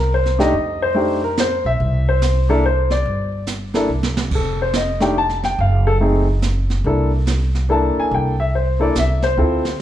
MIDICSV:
0, 0, Header, 1, 5, 480
1, 0, Start_track
1, 0, Tempo, 421053
1, 608, Time_signature, 3, 2, 24, 8
1, 11189, End_track
2, 0, Start_track
2, 0, Title_t, "Upright piano"
2, 0, Program_c, 0, 0
2, 0, Note_on_c, 0, 70, 63
2, 134, Note_off_c, 0, 70, 0
2, 161, Note_on_c, 0, 72, 75
2, 438, Note_on_c, 0, 62, 64
2, 441, Note_on_c, 0, 57, 66
2, 445, Note_off_c, 0, 72, 0
2, 452, Note_on_c, 0, 63, 64
2, 452, Note_on_c, 0, 67, 77
2, 467, Note_on_c, 0, 75, 88
2, 591, Note_off_c, 0, 62, 0
2, 592, Note_off_c, 0, 57, 0
2, 598, Note_off_c, 0, 63, 0
2, 598, Note_off_c, 0, 67, 0
2, 939, Note_on_c, 0, 72, 80
2, 1057, Note_off_c, 0, 75, 0
2, 1076, Note_on_c, 0, 57, 54
2, 1087, Note_on_c, 0, 62, 48
2, 1089, Note_on_c, 0, 63, 49
2, 1097, Note_on_c, 0, 67, 58
2, 1360, Note_off_c, 0, 57, 0
2, 1366, Note_off_c, 0, 62, 0
2, 1366, Note_off_c, 0, 63, 0
2, 1370, Note_off_c, 0, 67, 0
2, 1375, Note_off_c, 0, 72, 0
2, 1415, Note_on_c, 0, 70, 72
2, 1571, Note_off_c, 0, 70, 0
2, 1597, Note_on_c, 0, 72, 73
2, 1882, Note_off_c, 0, 72, 0
2, 1895, Note_on_c, 0, 76, 91
2, 2378, Note_on_c, 0, 72, 76
2, 2490, Note_off_c, 0, 76, 0
2, 2814, Note_off_c, 0, 72, 0
2, 2840, Note_on_c, 0, 62, 67
2, 2841, Note_on_c, 0, 58, 71
2, 2846, Note_on_c, 0, 70, 75
2, 2849, Note_on_c, 0, 69, 80
2, 2850, Note_on_c, 0, 64, 69
2, 2990, Note_off_c, 0, 62, 0
2, 2991, Note_off_c, 0, 58, 0
2, 2995, Note_off_c, 0, 64, 0
2, 2995, Note_off_c, 0, 69, 0
2, 3005, Note_off_c, 0, 70, 0
2, 3027, Note_on_c, 0, 72, 76
2, 3317, Note_off_c, 0, 72, 0
2, 3322, Note_on_c, 0, 74, 82
2, 3923, Note_off_c, 0, 74, 0
2, 4263, Note_on_c, 0, 58, 64
2, 4274, Note_on_c, 0, 62, 62
2, 4277, Note_on_c, 0, 64, 62
2, 4280, Note_on_c, 0, 69, 71
2, 4421, Note_off_c, 0, 58, 0
2, 4427, Note_off_c, 0, 62, 0
2, 4429, Note_off_c, 0, 64, 0
2, 4430, Note_off_c, 0, 69, 0
2, 4961, Note_on_c, 0, 69, 60
2, 5243, Note_off_c, 0, 69, 0
2, 5265, Note_on_c, 0, 72, 73
2, 5415, Note_off_c, 0, 72, 0
2, 5427, Note_on_c, 0, 75, 66
2, 5703, Note_on_c, 0, 57, 60
2, 5708, Note_on_c, 0, 62, 57
2, 5710, Note_on_c, 0, 63, 58
2, 5716, Note_off_c, 0, 75, 0
2, 5717, Note_on_c, 0, 67, 66
2, 5725, Note_on_c, 0, 79, 73
2, 5861, Note_off_c, 0, 57, 0
2, 5863, Note_off_c, 0, 62, 0
2, 5865, Note_off_c, 0, 63, 0
2, 5868, Note_off_c, 0, 67, 0
2, 5884, Note_off_c, 0, 79, 0
2, 5906, Note_on_c, 0, 81, 90
2, 6195, Note_off_c, 0, 81, 0
2, 6210, Note_on_c, 0, 79, 80
2, 6367, Note_off_c, 0, 79, 0
2, 6391, Note_on_c, 0, 77, 74
2, 6678, Note_off_c, 0, 77, 0
2, 6691, Note_on_c, 0, 69, 83
2, 6788, Note_off_c, 0, 69, 0
2, 6846, Note_on_c, 0, 57, 54
2, 6851, Note_on_c, 0, 60, 52
2, 6852, Note_on_c, 0, 63, 53
2, 6863, Note_on_c, 0, 68, 67
2, 7124, Note_off_c, 0, 57, 0
2, 7126, Note_off_c, 0, 60, 0
2, 7126, Note_off_c, 0, 63, 0
2, 7132, Note_off_c, 0, 68, 0
2, 7813, Note_on_c, 0, 58, 51
2, 7818, Note_on_c, 0, 62, 49
2, 7824, Note_on_c, 0, 64, 49
2, 7827, Note_on_c, 0, 69, 57
2, 8088, Note_off_c, 0, 58, 0
2, 8090, Note_off_c, 0, 62, 0
2, 8093, Note_off_c, 0, 64, 0
2, 8095, Note_off_c, 0, 69, 0
2, 8766, Note_on_c, 0, 62, 53
2, 8771, Note_on_c, 0, 58, 63
2, 8773, Note_on_c, 0, 64, 57
2, 8776, Note_on_c, 0, 69, 65
2, 8798, Note_on_c, 0, 81, 69
2, 9083, Note_off_c, 0, 81, 0
2, 9115, Note_on_c, 0, 80, 79
2, 9261, Note_off_c, 0, 80, 0
2, 9286, Note_on_c, 0, 79, 70
2, 9494, Note_off_c, 0, 62, 0
2, 9497, Note_off_c, 0, 58, 0
2, 9498, Note_off_c, 0, 64, 0
2, 9499, Note_off_c, 0, 69, 0
2, 9567, Note_off_c, 0, 79, 0
2, 9574, Note_on_c, 0, 76, 83
2, 9730, Note_off_c, 0, 76, 0
2, 9750, Note_on_c, 0, 72, 58
2, 10025, Note_on_c, 0, 58, 58
2, 10030, Note_on_c, 0, 62, 51
2, 10037, Note_on_c, 0, 64, 55
2, 10040, Note_off_c, 0, 72, 0
2, 10040, Note_on_c, 0, 69, 66
2, 10053, Note_on_c, 0, 74, 73
2, 10185, Note_off_c, 0, 58, 0
2, 10187, Note_off_c, 0, 62, 0
2, 10190, Note_off_c, 0, 64, 0
2, 10192, Note_off_c, 0, 69, 0
2, 10211, Note_off_c, 0, 74, 0
2, 10243, Note_on_c, 0, 76, 83
2, 10527, Note_off_c, 0, 76, 0
2, 10527, Note_on_c, 0, 72, 77
2, 10687, Note_on_c, 0, 64, 53
2, 10688, Note_on_c, 0, 60, 54
2, 10698, Note_on_c, 0, 65, 55
2, 10702, Note_on_c, 0, 69, 60
2, 10967, Note_off_c, 0, 64, 0
2, 10968, Note_off_c, 0, 60, 0
2, 10973, Note_off_c, 0, 65, 0
2, 10975, Note_off_c, 0, 69, 0
2, 11129, Note_off_c, 0, 72, 0
2, 11189, End_track
3, 0, Start_track
3, 0, Title_t, "Upright bass"
3, 0, Program_c, 1, 32
3, 0, Note_on_c, 1, 36, 88
3, 556, Note_off_c, 1, 36, 0
3, 606, Note_on_c, 1, 41, 83
3, 1829, Note_off_c, 1, 41, 0
3, 1874, Note_on_c, 1, 35, 72
3, 2033, Note_off_c, 1, 35, 0
3, 2052, Note_on_c, 1, 36, 88
3, 3442, Note_off_c, 1, 36, 0
3, 3483, Note_on_c, 1, 31, 84
3, 4397, Note_off_c, 1, 31, 0
3, 4429, Note_on_c, 1, 36, 64
3, 4882, Note_off_c, 1, 36, 0
3, 4915, Note_on_c, 1, 29, 87
3, 6313, Note_off_c, 1, 29, 0
3, 6367, Note_on_c, 1, 30, 90
3, 7760, Note_off_c, 1, 30, 0
3, 7801, Note_on_c, 1, 36, 87
3, 9028, Note_off_c, 1, 36, 0
3, 9249, Note_on_c, 1, 36, 88
3, 10163, Note_off_c, 1, 36, 0
3, 10208, Note_on_c, 1, 36, 69
3, 10655, Note_off_c, 1, 36, 0
3, 10685, Note_on_c, 1, 38, 84
3, 11189, Note_off_c, 1, 38, 0
3, 11189, End_track
4, 0, Start_track
4, 0, Title_t, "Muted upright bass strokes"
4, 9076, Note_on_c, 9, 29, 35
4, 9190, Note_off_c, 9, 29, 0
4, 11189, End_track
5, 0, Start_track
5, 0, Title_t, "Drums"
5, 292, Note_on_c, 9, 38, 27
5, 406, Note_off_c, 9, 38, 0
5, 456, Note_on_c, 9, 38, 40
5, 570, Note_off_c, 9, 38, 0
5, 604, Note_on_c, 9, 25, 49
5, 1565, Note_on_c, 9, 44, 61
5, 1569, Note_on_c, 9, 38, 57
5, 1679, Note_off_c, 9, 44, 0
5, 1683, Note_off_c, 9, 38, 0
5, 2049, Note_off_c, 9, 25, 0
5, 2049, Note_on_c, 9, 25, 44
5, 2527, Note_on_c, 9, 44, 57
5, 2530, Note_on_c, 9, 38, 58
5, 2641, Note_off_c, 9, 44, 0
5, 2644, Note_off_c, 9, 38, 0
5, 3310, Note_on_c, 9, 38, 31
5, 3424, Note_off_c, 9, 38, 0
5, 3480, Note_off_c, 9, 25, 0
5, 3480, Note_on_c, 9, 25, 43
5, 3954, Note_on_c, 9, 44, 50
5, 3957, Note_on_c, 9, 38, 53
5, 4068, Note_off_c, 9, 44, 0
5, 4071, Note_off_c, 9, 38, 0
5, 4264, Note_on_c, 9, 38, 37
5, 4378, Note_off_c, 9, 38, 0
5, 4594, Note_on_c, 9, 38, 51
5, 4708, Note_off_c, 9, 38, 0
5, 4753, Note_on_c, 9, 38, 69
5, 4867, Note_off_c, 9, 38, 0
5, 4914, Note_off_c, 9, 25, 0
5, 4914, Note_on_c, 9, 25, 44
5, 4914, Note_on_c, 9, 49, 71
5, 4916, Note_on_c, 9, 36, 68
5, 5028, Note_off_c, 9, 49, 0
5, 5030, Note_off_c, 9, 36, 0
5, 5394, Note_on_c, 9, 44, 61
5, 5397, Note_on_c, 9, 38, 55
5, 5508, Note_off_c, 9, 44, 0
5, 5511, Note_off_c, 9, 38, 0
5, 5705, Note_on_c, 9, 38, 38
5, 5819, Note_off_c, 9, 38, 0
5, 6035, Note_on_c, 9, 38, 28
5, 6149, Note_off_c, 9, 38, 0
5, 6196, Note_on_c, 9, 38, 38
5, 6310, Note_off_c, 9, 38, 0
5, 6356, Note_off_c, 9, 25, 0
5, 6356, Note_on_c, 9, 25, 45
5, 7320, Note_on_c, 9, 44, 62
5, 7323, Note_on_c, 9, 38, 55
5, 7434, Note_off_c, 9, 44, 0
5, 7437, Note_off_c, 9, 38, 0
5, 7637, Note_on_c, 9, 38, 34
5, 7751, Note_off_c, 9, 38, 0
5, 7810, Note_off_c, 9, 25, 0
5, 7810, Note_on_c, 9, 25, 53
5, 8285, Note_on_c, 9, 44, 51
5, 8288, Note_on_c, 9, 38, 57
5, 8399, Note_off_c, 9, 44, 0
5, 8402, Note_off_c, 9, 38, 0
5, 8605, Note_on_c, 9, 38, 37
5, 8719, Note_off_c, 9, 38, 0
5, 9252, Note_off_c, 9, 25, 0
5, 9252, Note_on_c, 9, 25, 49
5, 10207, Note_on_c, 9, 44, 55
5, 10210, Note_on_c, 9, 38, 60
5, 10321, Note_off_c, 9, 44, 0
5, 10324, Note_off_c, 9, 38, 0
5, 10514, Note_on_c, 9, 38, 37
5, 10628, Note_off_c, 9, 38, 0
5, 10687, Note_off_c, 9, 25, 0
5, 10687, Note_on_c, 9, 25, 47
5, 11000, Note_on_c, 9, 38, 38
5, 11114, Note_off_c, 9, 38, 0
5, 11189, Note_off_c, 9, 25, 0
5, 11189, End_track
0, 0, End_of_file